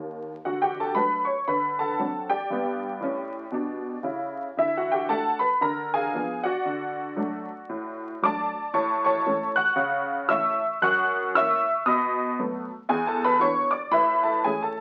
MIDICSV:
0, 0, Header, 1, 2, 480
1, 0, Start_track
1, 0, Key_signature, 2, "major"
1, 0, Tempo, 519031
1, 390, Time_signature, 4, 2, 24, 8
1, 8083, Key_signature, 3, "major"
1, 13692, End_track
2, 0, Start_track
2, 0, Title_t, "Honky-tonk piano"
2, 0, Program_c, 0, 3
2, 0, Note_on_c, 0, 39, 48
2, 0, Note_on_c, 0, 51, 49
2, 292, Note_off_c, 0, 51, 0
2, 297, Note_off_c, 0, 39, 0
2, 417, Note_on_c, 0, 50, 61
2, 418, Note_on_c, 0, 78, 70
2, 427, Note_on_c, 0, 66, 59
2, 559, Note_off_c, 0, 66, 0
2, 564, Note_off_c, 0, 78, 0
2, 564, Control_c, 0, 64, 127
2, 571, Note_on_c, 0, 79, 77
2, 587, Note_on_c, 0, 67, 56
2, 719, Note_off_c, 0, 67, 0
2, 721, Note_off_c, 0, 79, 0
2, 741, Note_on_c, 0, 81, 72
2, 744, Note_on_c, 0, 69, 56
2, 814, Note_off_c, 0, 50, 0
2, 876, Note_on_c, 0, 83, 86
2, 878, Note_off_c, 0, 69, 0
2, 878, Note_on_c, 0, 54, 39
2, 880, Control_c, 0, 64, 0
2, 880, Note_on_c, 0, 62, 47
2, 884, Note_on_c, 0, 57, 42
2, 886, Note_off_c, 0, 81, 0
2, 892, Note_on_c, 0, 71, 66
2, 1140, Note_off_c, 0, 54, 0
2, 1142, Note_off_c, 0, 62, 0
2, 1145, Note_off_c, 0, 57, 0
2, 1148, Note_off_c, 0, 71, 0
2, 1155, Note_on_c, 0, 85, 76
2, 1159, Note_off_c, 0, 83, 0
2, 1174, Note_on_c, 0, 73, 58
2, 1348, Note_off_c, 0, 73, 0
2, 1351, Note_off_c, 0, 85, 0
2, 1364, Note_on_c, 0, 50, 65
2, 1365, Note_on_c, 0, 83, 76
2, 1372, Note_on_c, 0, 71, 63
2, 1514, Control_c, 0, 64, 127
2, 1628, Note_off_c, 0, 71, 0
2, 1644, Note_off_c, 0, 83, 0
2, 1656, Note_on_c, 0, 81, 76
2, 1667, Note_on_c, 0, 69, 60
2, 1669, Note_on_c, 0, 78, 55
2, 1768, Note_off_c, 0, 50, 0
2, 1842, Control_c, 0, 64, 0
2, 1843, Note_on_c, 0, 54, 44
2, 1844, Note_on_c, 0, 60, 38
2, 1850, Note_on_c, 0, 62, 43
2, 2101, Note_off_c, 0, 69, 0
2, 2101, Note_off_c, 0, 78, 0
2, 2105, Note_off_c, 0, 54, 0
2, 2106, Note_off_c, 0, 60, 0
2, 2110, Note_off_c, 0, 62, 0
2, 2122, Note_on_c, 0, 79, 82
2, 2128, Note_off_c, 0, 81, 0
2, 2128, Note_on_c, 0, 67, 56
2, 2132, Note_on_c, 0, 74, 58
2, 2312, Note_on_c, 0, 43, 57
2, 2334, Note_on_c, 0, 59, 63
2, 2489, Control_c, 0, 64, 127
2, 2698, Note_off_c, 0, 43, 0
2, 2711, Note_off_c, 0, 59, 0
2, 2780, Note_on_c, 0, 45, 58
2, 2805, Note_on_c, 0, 61, 69
2, 2808, Control_c, 0, 64, 0
2, 3171, Note_off_c, 0, 45, 0
2, 3186, Note_off_c, 0, 61, 0
2, 3253, Note_on_c, 0, 47, 63
2, 3274, Note_on_c, 0, 62, 64
2, 3647, Note_off_c, 0, 47, 0
2, 3659, Note_off_c, 0, 62, 0
2, 3727, Note_on_c, 0, 49, 58
2, 3740, Note_on_c, 0, 64, 62
2, 4124, Note_off_c, 0, 49, 0
2, 4131, Note_off_c, 0, 64, 0
2, 4205, Note_off_c, 0, 67, 0
2, 4207, Note_off_c, 0, 74, 0
2, 4227, Note_on_c, 0, 50, 62
2, 4239, Note_off_c, 0, 79, 0
2, 4241, Note_on_c, 0, 76, 89
2, 4244, Note_on_c, 0, 64, 69
2, 4390, Note_off_c, 0, 64, 0
2, 4399, Note_off_c, 0, 76, 0
2, 4411, Control_c, 0, 64, 127
2, 4415, Note_on_c, 0, 78, 67
2, 4416, Note_on_c, 0, 66, 57
2, 4545, Note_on_c, 0, 79, 78
2, 4556, Note_off_c, 0, 66, 0
2, 4566, Note_off_c, 0, 78, 0
2, 4568, Note_on_c, 0, 67, 54
2, 4640, Note_off_c, 0, 50, 0
2, 4703, Note_on_c, 0, 57, 43
2, 4706, Note_on_c, 0, 62, 50
2, 4709, Note_on_c, 0, 81, 94
2, 4712, Note_off_c, 0, 79, 0
2, 4713, Note_off_c, 0, 67, 0
2, 4716, Note_on_c, 0, 78, 71
2, 4719, Note_on_c, 0, 69, 69
2, 4729, Control_c, 0, 64, 0
2, 4971, Note_off_c, 0, 57, 0
2, 4974, Note_off_c, 0, 62, 0
2, 4982, Note_off_c, 0, 78, 0
2, 4984, Note_off_c, 0, 69, 0
2, 4987, Note_on_c, 0, 83, 87
2, 4999, Note_off_c, 0, 81, 0
2, 5003, Note_on_c, 0, 71, 60
2, 5185, Note_off_c, 0, 71, 0
2, 5188, Note_on_c, 0, 50, 76
2, 5191, Note_off_c, 0, 83, 0
2, 5198, Note_on_c, 0, 82, 84
2, 5202, Note_on_c, 0, 70, 67
2, 5376, Control_c, 0, 64, 127
2, 5466, Note_off_c, 0, 70, 0
2, 5484, Note_off_c, 0, 82, 0
2, 5491, Note_on_c, 0, 80, 88
2, 5497, Note_on_c, 0, 68, 60
2, 5502, Note_on_c, 0, 77, 63
2, 5602, Note_off_c, 0, 50, 0
2, 5681, Note_on_c, 0, 53, 39
2, 5687, Note_on_c, 0, 59, 44
2, 5689, Control_c, 0, 64, 0
2, 5690, Note_on_c, 0, 62, 41
2, 5939, Note_off_c, 0, 68, 0
2, 5941, Note_off_c, 0, 77, 0
2, 5945, Note_off_c, 0, 53, 0
2, 5949, Note_off_c, 0, 59, 0
2, 5951, Note_off_c, 0, 62, 0
2, 5951, Note_on_c, 0, 78, 89
2, 5967, Note_on_c, 0, 66, 70
2, 5968, Note_off_c, 0, 80, 0
2, 5969, Note_on_c, 0, 74, 65
2, 6153, Note_on_c, 0, 50, 67
2, 6363, Control_c, 0, 64, 127
2, 6565, Note_off_c, 0, 50, 0
2, 6625, Note_on_c, 0, 54, 54
2, 6628, Note_on_c, 0, 57, 54
2, 6643, Note_on_c, 0, 62, 54
2, 6654, Control_c, 0, 64, 0
2, 6894, Note_off_c, 0, 54, 0
2, 6896, Note_off_c, 0, 57, 0
2, 6907, Note_off_c, 0, 62, 0
2, 7115, Note_on_c, 0, 45, 66
2, 7526, Note_off_c, 0, 45, 0
2, 7566, Note_off_c, 0, 66, 0
2, 7568, Note_off_c, 0, 74, 0
2, 7595, Note_off_c, 0, 78, 0
2, 7606, Note_on_c, 0, 54, 50
2, 7614, Note_on_c, 0, 57, 49
2, 7616, Note_on_c, 0, 86, 104
2, 7626, Note_on_c, 0, 62, 50
2, 7630, Note_on_c, 0, 74, 77
2, 7633, Note_on_c, 0, 81, 84
2, 7869, Note_off_c, 0, 54, 0
2, 7875, Note_off_c, 0, 57, 0
2, 7884, Note_off_c, 0, 62, 0
2, 8064, Note_off_c, 0, 74, 0
2, 8066, Note_off_c, 0, 81, 0
2, 8079, Note_on_c, 0, 45, 74
2, 8082, Note_on_c, 0, 85, 89
2, 8088, Note_on_c, 0, 81, 70
2, 8089, Note_on_c, 0, 73, 69
2, 8090, Note_off_c, 0, 86, 0
2, 8246, Control_c, 0, 64, 127
2, 8351, Note_off_c, 0, 73, 0
2, 8351, Note_off_c, 0, 81, 0
2, 8351, Note_off_c, 0, 85, 0
2, 8365, Note_on_c, 0, 85, 96
2, 8377, Note_on_c, 0, 73, 86
2, 8381, Note_on_c, 0, 81, 73
2, 8489, Note_off_c, 0, 45, 0
2, 8566, Note_on_c, 0, 52, 49
2, 8569, Note_on_c, 0, 57, 49
2, 8571, Note_on_c, 0, 61, 53
2, 8574, Control_c, 0, 64, 0
2, 8819, Note_off_c, 0, 73, 0
2, 8821, Note_off_c, 0, 81, 0
2, 8829, Note_off_c, 0, 52, 0
2, 8830, Note_off_c, 0, 85, 0
2, 8832, Note_off_c, 0, 57, 0
2, 8833, Note_off_c, 0, 61, 0
2, 8839, Note_on_c, 0, 90, 101
2, 8844, Note_on_c, 0, 85, 73
2, 8851, Note_on_c, 0, 78, 78
2, 9023, Note_on_c, 0, 49, 82
2, 9237, Control_c, 0, 64, 127
2, 9440, Note_off_c, 0, 49, 0
2, 9484, Note_off_c, 0, 85, 0
2, 9488, Note_off_c, 0, 78, 0
2, 9512, Note_on_c, 0, 52, 50
2, 9513, Note_on_c, 0, 88, 93
2, 9518, Note_off_c, 0, 90, 0
2, 9520, Note_on_c, 0, 57, 47
2, 9520, Note_on_c, 0, 61, 61
2, 9528, Note_on_c, 0, 76, 72
2, 9535, Note_on_c, 0, 85, 72
2, 9536, Control_c, 0, 64, 0
2, 9779, Note_off_c, 0, 52, 0
2, 9785, Note_off_c, 0, 57, 0
2, 9785, Note_off_c, 0, 61, 0
2, 9972, Note_off_c, 0, 76, 0
2, 9975, Note_off_c, 0, 85, 0
2, 9998, Note_off_c, 0, 88, 0
2, 10005, Note_on_c, 0, 42, 80
2, 10008, Note_on_c, 0, 90, 104
2, 10017, Note_on_c, 0, 78, 81
2, 10023, Note_on_c, 0, 85, 84
2, 10200, Control_c, 0, 64, 127
2, 10411, Note_off_c, 0, 42, 0
2, 10456, Note_off_c, 0, 78, 0
2, 10459, Note_off_c, 0, 85, 0
2, 10485, Note_off_c, 0, 90, 0
2, 10489, Control_c, 0, 64, 0
2, 10496, Note_on_c, 0, 52, 49
2, 10500, Note_on_c, 0, 88, 115
2, 10501, Note_on_c, 0, 61, 53
2, 10502, Note_on_c, 0, 58, 57
2, 10502, Note_on_c, 0, 85, 89
2, 10512, Note_on_c, 0, 76, 87
2, 10756, Note_off_c, 0, 52, 0
2, 10759, Note_off_c, 0, 61, 0
2, 10761, Note_off_c, 0, 58, 0
2, 10938, Note_off_c, 0, 85, 0
2, 10944, Note_off_c, 0, 76, 0
2, 10967, Note_on_c, 0, 47, 78
2, 10967, Note_on_c, 0, 87, 86
2, 10970, Note_off_c, 0, 88, 0
2, 10985, Note_on_c, 0, 75, 71
2, 10987, Note_on_c, 0, 83, 72
2, 11126, Control_c, 0, 64, 127
2, 11372, Note_off_c, 0, 47, 0
2, 11420, Note_off_c, 0, 75, 0
2, 11420, Note_off_c, 0, 83, 0
2, 11443, Note_off_c, 0, 87, 0
2, 11447, Control_c, 0, 64, 0
2, 11460, Note_on_c, 0, 54, 49
2, 11463, Note_on_c, 0, 59, 55
2, 11464, Note_on_c, 0, 57, 51
2, 11718, Note_off_c, 0, 54, 0
2, 11720, Note_off_c, 0, 59, 0
2, 11721, Note_off_c, 0, 57, 0
2, 11920, Note_on_c, 0, 40, 76
2, 11924, Note_on_c, 0, 80, 92
2, 11932, Note_on_c, 0, 68, 69
2, 12074, Note_off_c, 0, 68, 0
2, 12081, Note_off_c, 0, 80, 0
2, 12089, Note_on_c, 0, 81, 87
2, 12101, Note_on_c, 0, 69, 72
2, 12109, Control_c, 0, 64, 127
2, 12239, Note_off_c, 0, 69, 0
2, 12243, Note_off_c, 0, 81, 0
2, 12248, Note_on_c, 0, 83, 100
2, 12255, Note_on_c, 0, 71, 72
2, 12326, Note_off_c, 0, 40, 0
2, 12391, Note_on_c, 0, 52, 47
2, 12395, Note_off_c, 0, 71, 0
2, 12401, Note_on_c, 0, 59, 54
2, 12402, Note_on_c, 0, 85, 106
2, 12403, Note_off_c, 0, 83, 0
2, 12405, Control_c, 0, 64, 0
2, 12408, Note_on_c, 0, 73, 76
2, 12411, Note_on_c, 0, 62, 50
2, 12656, Note_off_c, 0, 52, 0
2, 12663, Note_off_c, 0, 59, 0
2, 12667, Note_off_c, 0, 73, 0
2, 12670, Note_off_c, 0, 62, 0
2, 12677, Note_on_c, 0, 86, 89
2, 12684, Note_off_c, 0, 85, 0
2, 12685, Note_on_c, 0, 74, 66
2, 12864, Note_off_c, 0, 74, 0
2, 12866, Note_on_c, 0, 45, 73
2, 12869, Note_on_c, 0, 83, 107
2, 12874, Note_off_c, 0, 86, 0
2, 12884, Note_on_c, 0, 71, 65
2, 12886, Note_on_c, 0, 76, 81
2, 13034, Control_c, 0, 64, 127
2, 13144, Note_off_c, 0, 71, 0
2, 13145, Note_off_c, 0, 76, 0
2, 13156, Note_off_c, 0, 83, 0
2, 13162, Note_on_c, 0, 81, 73
2, 13178, Note_on_c, 0, 69, 49
2, 13277, Note_off_c, 0, 45, 0
2, 13350, Note_off_c, 0, 69, 0
2, 13356, Note_off_c, 0, 81, 0
2, 13357, Note_on_c, 0, 80, 86
2, 13362, Control_c, 0, 64, 0
2, 13362, Note_on_c, 0, 52, 41
2, 13365, Note_on_c, 0, 61, 46
2, 13368, Note_on_c, 0, 57, 48
2, 13369, Note_on_c, 0, 68, 64
2, 13510, Note_off_c, 0, 68, 0
2, 13515, Note_off_c, 0, 80, 0
2, 13526, Note_on_c, 0, 81, 72
2, 13537, Note_on_c, 0, 69, 54
2, 13623, Note_off_c, 0, 52, 0
2, 13625, Note_off_c, 0, 61, 0
2, 13627, Note_off_c, 0, 57, 0
2, 13675, Note_off_c, 0, 69, 0
2, 13679, Note_off_c, 0, 81, 0
2, 13692, End_track
0, 0, End_of_file